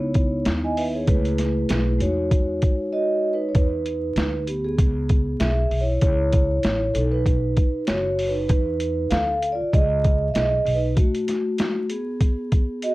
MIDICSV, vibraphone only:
0, 0, Header, 1, 2, 480
1, 0, Start_track
1, 0, Key_signature, 4, "major"
1, 0, Tempo, 618557
1, 835, Time_signature, 4, 2, 24, 8
1, 10045, End_track
2, 0, Start_track
2, 0, Title_t, "Vibraphone"
2, 0, Program_c, 0, 11
2, 0, Note_on_c, 0, 59, 85
2, 0, Note_on_c, 0, 63, 67
2, 0, Note_on_c, 0, 64, 65
2, 0, Note_on_c, 0, 73, 82
2, 350, Note_off_c, 0, 73, 0
2, 497, Note_on_c, 0, 80, 64
2, 499, Note_on_c, 0, 75, 58
2, 592, Note_off_c, 0, 80, 0
2, 593, Note_off_c, 0, 75, 0
2, 596, Note_on_c, 0, 76, 67
2, 601, Note_on_c, 0, 71, 59
2, 726, Note_off_c, 0, 76, 0
2, 729, Note_off_c, 0, 71, 0
2, 734, Note_on_c, 0, 73, 64
2, 739, Note_on_c, 0, 68, 58
2, 809, Note_off_c, 0, 59, 0
2, 813, Note_off_c, 0, 63, 0
2, 817, Note_off_c, 0, 64, 0
2, 825, Note_off_c, 0, 68, 0
2, 826, Note_on_c, 0, 56, 64
2, 830, Note_on_c, 0, 64, 71
2, 834, Note_on_c, 0, 68, 74
2, 838, Note_on_c, 0, 71, 90
2, 877, Note_on_c, 0, 57, 82
2, 888, Note_off_c, 0, 56, 0
2, 962, Note_off_c, 0, 73, 0
2, 1541, Note_on_c, 0, 56, 72
2, 1549, Note_on_c, 0, 63, 67
2, 1553, Note_off_c, 0, 64, 0
2, 1554, Note_off_c, 0, 68, 0
2, 1554, Note_on_c, 0, 66, 72
2, 1557, Note_off_c, 0, 71, 0
2, 1563, Note_on_c, 0, 73, 81
2, 1576, Note_off_c, 0, 57, 0
2, 2266, Note_off_c, 0, 66, 0
2, 2270, Note_on_c, 0, 75, 88
2, 2275, Note_on_c, 0, 66, 71
2, 2570, Note_off_c, 0, 75, 0
2, 2573, Note_off_c, 0, 66, 0
2, 2589, Note_off_c, 0, 63, 0
2, 2589, Note_on_c, 0, 71, 79
2, 2598, Note_on_c, 0, 63, 63
2, 2698, Note_off_c, 0, 73, 0
2, 2702, Note_off_c, 0, 63, 0
2, 2707, Note_on_c, 0, 73, 62
2, 2709, Note_off_c, 0, 71, 0
2, 2724, Note_off_c, 0, 56, 0
2, 2754, Note_off_c, 0, 73, 0
2, 2756, Note_on_c, 0, 71, 92
2, 2767, Note_on_c, 0, 63, 69
2, 3445, Note_off_c, 0, 71, 0
2, 3450, Note_off_c, 0, 63, 0
2, 3469, Note_on_c, 0, 67, 75
2, 3480, Note_on_c, 0, 59, 59
2, 3604, Note_on_c, 0, 68, 88
2, 3606, Note_off_c, 0, 59, 0
2, 3614, Note_off_c, 0, 67, 0
2, 3617, Note_on_c, 0, 59, 65
2, 4166, Note_off_c, 0, 59, 0
2, 4190, Note_on_c, 0, 76, 95
2, 4196, Note_off_c, 0, 68, 0
2, 4205, Note_on_c, 0, 68, 70
2, 4498, Note_off_c, 0, 68, 0
2, 4507, Note_on_c, 0, 73, 81
2, 4522, Note_off_c, 0, 76, 0
2, 4522, Note_on_c, 0, 64, 59
2, 4660, Note_off_c, 0, 73, 0
2, 4667, Note_off_c, 0, 64, 0
2, 4670, Note_on_c, 0, 73, 102
2, 4686, Note_on_c, 0, 64, 80
2, 5369, Note_off_c, 0, 64, 0
2, 5384, Note_on_c, 0, 69, 88
2, 5401, Note_on_c, 0, 63, 67
2, 5414, Note_off_c, 0, 73, 0
2, 5521, Note_on_c, 0, 71, 90
2, 5526, Note_off_c, 0, 63, 0
2, 5531, Note_off_c, 0, 69, 0
2, 5541, Note_on_c, 0, 63, 73
2, 6078, Note_off_c, 0, 71, 0
2, 6088, Note_off_c, 0, 63, 0
2, 6105, Note_on_c, 0, 73, 90
2, 6128, Note_on_c, 0, 66, 76
2, 6419, Note_off_c, 0, 66, 0
2, 6423, Note_on_c, 0, 71, 83
2, 6440, Note_off_c, 0, 73, 0
2, 6441, Note_on_c, 0, 63, 68
2, 6573, Note_off_c, 0, 71, 0
2, 6582, Note_on_c, 0, 71, 102
2, 6587, Note_off_c, 0, 63, 0
2, 6602, Note_on_c, 0, 63, 79
2, 7047, Note_off_c, 0, 63, 0
2, 7064, Note_on_c, 0, 77, 98
2, 7083, Note_off_c, 0, 71, 0
2, 7085, Note_on_c, 0, 69, 72
2, 7367, Note_off_c, 0, 77, 0
2, 7378, Note_off_c, 0, 69, 0
2, 7389, Note_on_c, 0, 74, 94
2, 7410, Note_on_c, 0, 65, 74
2, 7548, Note_on_c, 0, 75, 104
2, 7552, Note_off_c, 0, 65, 0
2, 7557, Note_off_c, 0, 74, 0
2, 7567, Note_on_c, 0, 68, 76
2, 7955, Note_off_c, 0, 75, 0
2, 7964, Note_off_c, 0, 68, 0
2, 7986, Note_on_c, 0, 76, 66
2, 8023, Note_on_c, 0, 75, 98
2, 8033, Note_off_c, 0, 76, 0
2, 8037, Note_on_c, 0, 68, 75
2, 8334, Note_off_c, 0, 68, 0
2, 8339, Note_on_c, 0, 71, 85
2, 8355, Note_on_c, 0, 63, 66
2, 8359, Note_off_c, 0, 75, 0
2, 8414, Note_off_c, 0, 71, 0
2, 8427, Note_off_c, 0, 63, 0
2, 8499, Note_on_c, 0, 66, 92
2, 8513, Note_on_c, 0, 57, 71
2, 9196, Note_off_c, 0, 66, 0
2, 9203, Note_off_c, 0, 57, 0
2, 9230, Note_on_c, 0, 68, 80
2, 9244, Note_on_c, 0, 59, 62
2, 9959, Note_on_c, 0, 75, 96
2, 9965, Note_on_c, 0, 66, 77
2, 10045, Note_off_c, 0, 59, 0
2, 10045, Note_off_c, 0, 66, 0
2, 10045, Note_off_c, 0, 68, 0
2, 10045, Note_off_c, 0, 75, 0
2, 10045, End_track
0, 0, End_of_file